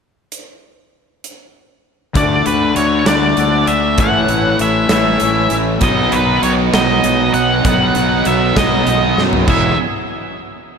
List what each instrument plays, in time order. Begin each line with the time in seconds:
0.32 closed hi-hat
1.24 closed hi-hat
2.15 fingered electric bass D2, clean electric guitar D3 A3 D4 F#4, lead electric guitar D5, kick, closed hi-hat
2.46 fingered electric bass D2, clean electric guitar A3 D4 F#4, lead electric guitar B4, closed hi-hat
2.76 fingered electric bass D2, clean electric guitar D3 A3 D4 F#4, lead electric guitar C#5, closed hi-hat
3.06 fingered electric bass D2, clean electric guitar D3 A3 D4 F#4, lead electric guitar D5, snare, closed hi-hat
3.37 fingered electric bass D2, clean electric guitar D3 A3 D4 F#4, closed hi-hat
3.67 fingered electric bass D2, lead electric guitar E5, closed hi-hat
3.98 fingered electric bass A1, clean electric guitar A2 E3 A3 C#4 E4, lead electric guitar F#5, kick, closed hi-hat
4.28 fingered electric bass A1, clean electric guitar A3 C#4 E4, closed hi-hat
4.59 fingered electric bass A1, clean electric guitar E3 A3 C#4 E4, lead electric guitar E5, closed hi-hat
4.89 fingered electric bass A1, clean electric guitar A2 E3 A3 C#4 E4, lead electric guitar E5, snare, closed hi-hat
5.20 fingered electric bass A1, clean electric guitar E3 A3 C#4 E4, closed hi-hat
5.50 fingered electric bass A1, closed hi-hat
5.81 fingered electric bass B1, clean electric guitar B2 D#3 F#3 B3 D#4, lead electric guitar D#5, kick, closed hi-hat
6.12 fingered electric bass B1, clean electric guitar F#3 B3 D#4, lead electric guitar B4, closed hi-hat
6.42 fingered electric bass B1, clean electric guitar D#3 F#3 B3 D#4, lead electric guitar C#5, closed hi-hat
6.73 fingered electric bass B1, clean electric guitar B2 D#3 F#3 B3 D#4, lead electric guitar D#5, snare, closed hi-hat
7.03 fingered electric bass B1, clean electric guitar D#3 F#3 B3 D#4, closed hi-hat
7.34 fingered electric bass B1, lead electric guitar F#5, closed hi-hat
7.65 fingered electric bass B1, clean electric guitar B2 D#3 F#3 B3 D#4, lead electric guitar F#5, kick, closed hi-hat
7.95 fingered electric bass B1, clean electric guitar F#3 B3, closed hi-hat
8.25 fingered electric bass B1, clean electric guitar D#3 F#3 B3, lead electric guitar E5, closed hi-hat
8.56 fingered electric bass B1, clean electric guitar B2 D#3 F#3 B3 D#4, lead electric guitar D#5, kick, snare, closed hi-hat
8.87 fingered electric bass B1, clean electric guitar D#3 F#3 B3 D#4, closed hi-hat
9.18 fingered electric bass F#2, snare
9.33 floor tom
9.47 fingered electric bass E1, distorted electric guitar E2 B2 G#3, clean electric guitar E3 F#3 B3 E4 G#4, lead electric guitar E5, kick, crash